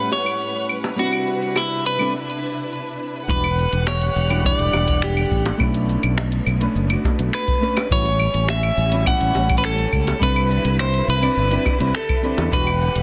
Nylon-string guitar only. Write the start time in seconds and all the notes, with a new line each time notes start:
Already playing: A2 B3 C#4 E4 G4
0.96 G3 B3 C4 D4
1.01 E4
1.98 G3 B3 C4 D4 A4
3.28 G3 B3 D4 E4 F#4
4.29 G3 B3 D4 E4 F#4
4.42 G3 B3 D4
4.46 E4 G4
5.57 A3 B3 C#4 D4
5.62 E4
6.60 A3 B3 C#4 D4 B4
6.87 A3 B3 D4
6.93 F#4
7.60 A3 B3 C#4 D4 B4
7.90 G3 B3 C#4 E4 F#4
8.91 G3 B3 C#4 E4 F#4
9.04 G3 B3 C#4 E4
9.09 G4
10.19 G3 C4 D4 E4
10.24 A4
11.21 G3 C4 D4 E4 D5
11.50 G3 C4 D4 E4 B4
11.79 G3 C4 D4 E4 C5
12.22 G3 C4 D4 E4 C5
12.51 G3 B3 D4 E4 F#4